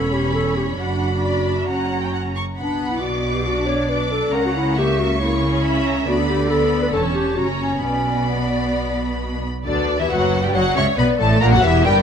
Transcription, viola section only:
0.00 0.79 C#4 soft
0.78 1.67 D4 soft
1.68 2.38 C#4 soft
2.58 3.42 B3 soft
3.46 3.89 D4 soft
3.90 4.33 D4 soft
4.33 4.77 C#4 soft
4.78 5.20 A#3 soft
5.21 5.42 A#3 soft
5.43 6.07 C#4 medium
6.07 6.48 B3 soft
6.50 6.92 B3 soft
6.93 7.36 C#4 soft
7.38 7.82 C#4 soft
7.83 9.43 B3 soft
9.66 9.97 D3 soft
9.99 10.04 E3 soft
10.11 10.43 F#3 medium
10.44 10.55 G3 medium
10.55 10.77 F#3 medium
10.76 10.84 C#4 medium
10.98 11.19 B3 soft
11.19 11.41 A3 medium
11.42 11.53 A#3 medium
11.53 11.64 F#3 medium
11.63 11.85 E3 medium
11.85 12.02 G3 medium

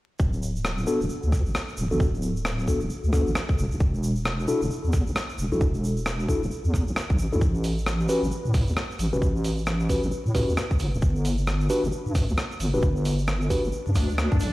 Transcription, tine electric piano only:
0.87 0.99 B3 medium
0.87 0.99 D4 medium
0.87 0.99 F#4 medium
0.87 0.99 A4 loud
1.91 2.05 B3 medium
1.91 2.05 D4 medium
1.91 2.05 F#4 medium
1.91 2.05 A4 medium
2.68 2.79 B3 medium
2.68 2.79 D4 medium
2.68 2.79 F#4 medium
2.68 2.79 A4 medium
3.13 3.30 B3 medium
3.13 3.30 D4 medium
3.13 3.30 F#4 medium
3.13 3.30 A4 medium
4.48 4.60 D4 medium
4.48 4.60 E4 medium
4.48 4.60 F#4 medium
4.48 4.60 A4 loud
5.52 5.66 D4 medium
5.52 5.66 E4 medium
5.52 5.66 F#4 medium
5.52 5.66 A4 medium
6.29 6.40 D4 medium
6.29 6.40 E4 medium
6.29 6.40 F#4 medium
6.29 6.40 A4 medium
7.33 7.40 D4 medium
7.33 7.40 E4 medium
7.33 7.40 F#4 medium
7.33 7.40 A4 medium
8.09 8.21 C#4 medium
8.09 8.21 F#4 medium
8.09 8.21 G4 medium
8.09 8.21 B4 loud
9.13 9.27 C#4 medium
9.13 9.27 F#4 medium
9.13 9.27 G4 medium
9.13 9.27 B4 medium
9.89 10.01 C#4 medium
9.89 10.01 F#4 medium
9.89 10.01 G4 medium
9.89 10.01 B4 medium
10.35 10.52 C#4 medium
10.35 10.52 F#4 medium
10.35 10.52 G4 medium
10.35 10.52 B4 medium
11.70 11.82 D4 loud
11.70 11.82 F#4 medium
11.70 11.82 G4 medium
11.70 11.82 B4 loud
12.74 12.88 D4 medium
12.74 12.88 F#4 medium
12.74 12.88 G4 medium
12.74 12.88 B4 medium
13.50 13.62 D4 medium
13.50 13.62 F#4 medium
13.50 13.62 G4 medium
13.50 13.62 B4 medium

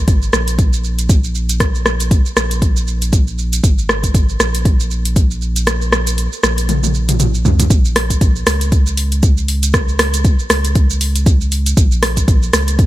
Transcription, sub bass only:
0.00 0.30 G#1 medium
0.33 2.22 A#1 medium
2.36 3.61 A#1 medium
3.64 4.37 G#1 medium
4.40 6.28 A#1 medium
6.43 7.44 A#1 medium
7.45 7.67 C#2 medium
7.70 8.44 A#1 medium
8.47 10.35 C#2 medium
10.50 11.74 C#2 medium
11.77 12.50 A#1 medium
12.53 12.86 C#2 medium

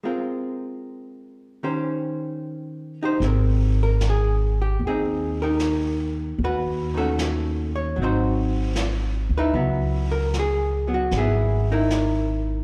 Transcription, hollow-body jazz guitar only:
0.04 1.62 G#3 soft
0.04 1.63 C4 soft
0.04 1.63 F4 soft
0.04 1.63 A#4 soft
1.63 3.21 D#3 soft
1.63 3.02 C#4 soft
1.63 3.02 G4 soft
1.63 3.04 C5 soft
3.03 3.24 D#4 soft
3.03 4.55 G4 soft
3.03 3.27 C5 medium
3.22 6.39 G#3 soft
3.22 4.87 C4 soft
3.27 3.82 A#4 soft
3.83 4.03 A#4 medium
4.10 4.59 G#4 medium
4.62 4.85 G4 medium
4.87 5.43 C4 soft
4.87 5.42 D#4 soft
4.87 5.40 G#4 medium
5.42 6.39 D#4 soft
5.42 6.39 G4 soft
5.42 6.13 A#4 medium
6.44 6.98 F#4 medium
6.44 6.92 B4 medium
6.94 7.97 D#3 soft
6.94 7.96 A3 soft
6.94 7.98 C#4 soft
6.94 7.70 A4 medium
6.99 7.99 F#4 soft
7.76 7.99 C#5 medium
7.96 9.53 F#3 soft
8.02 9.38 C4 soft
8.02 9.37 D#4 soft
8.02 9.53 F#4 soft
8.02 9.36 C5 medium
9.38 9.55 D#4 medium
9.38 10.88 E4 soft
9.38 10.06 B4 medium
9.54 10.86 F#3 soft
9.54 10.87 B3 soft
10.12 10.33 A#4 medium
10.40 10.90 G#4 medium
10.87 12.64 F#3 soft
10.87 11.18 B3 soft
10.94 11.16 F#4 medium
11.17 11.71 B3 soft
11.17 11.72 E4 soft
11.17 11.70 G#4 medium
11.72 12.64 D#4 medium
11.72 12.64 E4 soft
11.72 12.64 A#4 medium

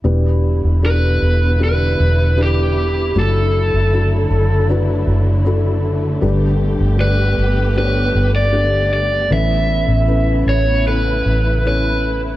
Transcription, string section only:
0.05 3.13 D3 medium
0.05 3.13 G3 medium
0.05 3.13 B3 medium
0.05 6.20 E4 medium
3.18 9.27 D3 medium
3.18 6.21 F#3 medium
3.18 12.37 A3 medium
6.24 9.28 B3 medium
6.24 9.28 G4 medium
9.31 12.37 C#3 medium
9.31 12.37 B3 medium
9.31 12.37 E4 medium

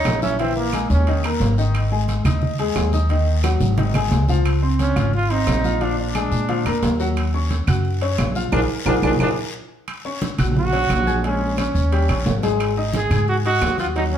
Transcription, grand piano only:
0.00 0.16 C#4 medium
0.00 0.16 C#5 medium
0.00 0.17 C#6 medium
0.22 0.36 E4 medium
0.22 0.36 E5 medium
0.22 0.36 E6 medium
0.40 0.67 E3 medium
0.40 0.67 E4 medium
0.40 0.68 E5 medium
0.74 1.01 G#3 medium
0.74 1.01 G#4 medium
0.74 1.02 G#5 medium
1.08 1.21 D#3 medium
1.08 1.21 D#4 medium
1.08 1.22 D#5 medium
1.25 1.52 A#3 medium
1.25 1.52 A#4 medium
1.25 1.52 A#5 medium
1.58 1.86 D#3 medium
1.58 1.86 D#4 medium
1.58 1.86 D#5 medium
1.92 2.19 G#3 medium
1.92 2.20 G#4 medium
1.92 2.20 G#5 medium
2.25 2.53 D#4 medium
2.25 2.53 D#5 medium
2.25 2.53 D#6 medium
2.59 2.87 G#3 medium
2.59 2.87 G#4 medium
2.59 2.87 G#5 medium
2.93 3.07 D#4 medium
2.93 3.07 D#5 medium
2.93 3.07 D#6 medium
3.10 3.38 D#3 medium
3.10 3.38 D#4 medium
3.10 3.38 D#5 medium
3.44 3.72 F#3 medium
3.44 3.72 F#4 medium
3.44 3.72 F#5 medium
3.78 3.92 D#3 medium
3.78 3.92 D#4 medium
3.78 3.92 D#5 medium
3.95 4.23 G#3 medium
3.95 4.23 G#4 medium
3.95 4.23 G#5 medium
4.29 4.57 F3 medium
4.29 4.57 F4 medium
4.29 4.57 F5 medium
4.62 4.90 C4 medium
4.62 4.90 C5 medium
4.62 4.90 C6 medium
4.96 5.24 F4 medium
4.96 5.24 F5 medium
4.96 5.24 F6 medium
5.30 5.58 C4 medium
5.30 5.58 C5 medium
5.30 5.58 C6 medium
5.64 5.78 F4 medium
5.64 5.78 F5 medium
5.64 5.79 F6 medium
5.81 6.09 F3 medium
5.81 6.09 F4 medium
5.81 6.09 F5 medium
6.15 6.43 G#3 medium
6.15 6.43 G#4 medium
6.15 6.43 G#5 medium
6.49 6.63 F3 medium
6.49 6.63 F4 medium
6.49 6.63 F5 medium
6.66 6.94 A#3 medium
6.66 6.94 A#4 medium
6.66 6.94 A#5 medium
7.00 7.28 F#3 medium
7.00 7.28 F#4 medium
7.00 7.28 F#5 medium
7.34 7.62 C#4 medium
7.34 7.62 C#5 medium
7.34 7.62 C#6 medium
7.68 7.95 F#4 medium
7.68 7.96 F#5 medium
7.68 7.96 F#6 medium
8.02 8.30 C#4 medium
8.02 8.30 C#5 medium
8.02 8.30 C#6 medium
8.36 8.50 F4 medium
8.36 8.50 F5 medium
8.36 8.50 F6 medium
8.53 8.64 F4 medium
8.53 8.63 G#4 medium
8.53 8.64 A#4 medium
8.86 8.97 F4 loud
8.86 8.97 G#4 medium
8.86 8.97 A#4 medium
9.04 9.14 F4 medium
9.04 9.14 G#4 medium
9.04 9.14 A#4 medium
9.20 9.31 F4 medium
9.20 9.31 G#4 medium
9.20 9.31 A#4 medium
10.05 10.33 C#4 medium
10.05 10.33 C#5 medium
10.05 10.33 C#6 medium
10.39 10.67 F#4 medium
10.39 10.67 F#5 medium
10.39 10.67 F#6 medium
10.73 11.01 C#4 medium
10.73 11.01 C#5 medium
10.73 11.01 C#6 medium
11.07 11.21 G#4 medium
11.07 11.21 G#5 medium
11.07 11.21 G#6 medium
11.24 11.52 G#3 medium
11.24 11.52 G#4 medium
11.24 11.52 G#5 medium
11.58 11.86 C#4 medium
11.58 11.86 C#5 medium
11.58 11.86 C#6 medium
11.92 12.06 G3 medium
11.92 12.06 G4 medium
11.92 12.06 G5 medium
12.09 12.37 C#4 medium
12.09 12.37 C#5 medium
12.09 12.37 C#6 medium
12.43 12.71 G#3 medium
12.43 12.71 G#4 medium
12.43 12.71 G#5 medium
12.77 13.05 D#4 medium
12.77 13.05 D#5 medium
12.77 13.05 D#6 medium
13.11 13.39 G#4 medium
13.11 13.39 G#5 medium
13.11 13.39 G#6 medium
13.45 13.73 D#4 medium
13.45 13.73 D#5 medium
13.45 13.73 D#6 medium
13.79 13.93 F#4 medium
13.79 13.93 F#5 medium
13.79 13.93 F#6 medium
13.96 14.18 F#3 medium
13.96 14.18 F#4 medium
13.96 14.18 F#5 medium

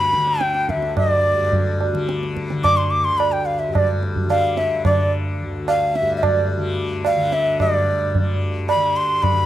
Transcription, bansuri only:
0.00 0.43 B5 medium
0.41 0.71 G5 medium
0.70 0.97 E5 medium
0.98 1.77 D5 medium
2.64 2.78 D6 loud
2.77 2.92 C6 medium
2.91 3.06 D6 medium
3.05 3.19 C6 medium
3.18 3.34 B5 medium
3.32 3.47 G5 medium
3.46 3.61 F5 medium
3.59 3.75 E5 medium
3.74 3.88 D5 medium
4.30 4.59 F5 loud
4.57 4.85 E5 medium
4.85 5.11 D5 medium
5.68 5.97 F5 loud
5.96 6.16 E5 loud
6.17 6.25 E5 medium
6.24 6.51 D5 medium
7.06 7.35 F5 loud
7.33 7.60 E5 loud
7.61 8.38 D5 medium
8.69 8.98 B5 loud
8.97 9.24 C6 medium
9.23 9.46 B5 loud

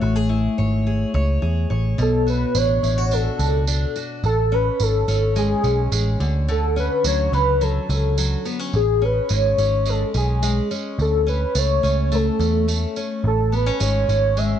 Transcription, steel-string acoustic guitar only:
0.00 2.01 A3 medium
0.00 0.28 E4 medium
0.00 0.16 F#4 medium
0.00 0.58 C#5 medium
0.16 0.85 G#4 soft
0.29 2.04 E4 medium
0.58 1.14 C#5 medium
0.87 1.41 G#4 medium
1.14 1.70 C#5 medium
1.42 2.04 G#4 medium
1.70 2.58 C#5 medium
1.98 4.23 B2 medium
2.27 2.83 F#4 medium
2.55 3.11 D4 medium
2.83 2.98 E4 medium
2.98 3.39 F#4 soft
3.12 3.66 D4 medium
3.40 3.95 F#4 medium
3.68 4.29 D4 medium
3.96 4.29 F#4 medium
4.52 5.08 C#4 medium
5.08 5.63 C#4 medium
5.36 5.91 G#3 medium
5.64 6.52 C#4 medium
5.92 6.26 G#3 medium
6.20 6.47 D3 medium
6.49 8.74 D3 medium
6.76 7.33 C#4 medium
7.05 7.60 F#3 medium
7.33 7.89 C#4 medium
7.61 8.17 F#3 medium
7.89 8.45 C#4 medium
8.18 8.80 F#3 medium
8.45 8.59 B3 medium
8.59 8.79 C#4 soft
9.02 9.58 C#4 medium
9.30 9.85 G#3 medium
9.58 10.14 C#4 medium
9.86 10.41 G#3 medium
10.14 10.70 C#4 medium
10.43 11.05 G#3 medium
10.71 11.26 C#4 medium
11.27 11.83 C#4 medium
11.55 12.11 A3 medium
11.83 12.39 C#4 medium
12.12 12.67 A3 medium
12.39 12.96 C#4 medium
12.68 13.55 A3 medium
12.97 13.30 C#4 medium
13.52 13.66 B3 medium
13.66 14.08 C#4 soft
13.80 14.36 G#3 medium
14.09 14.59 C#4 medium
14.37 14.59 G#3 medium

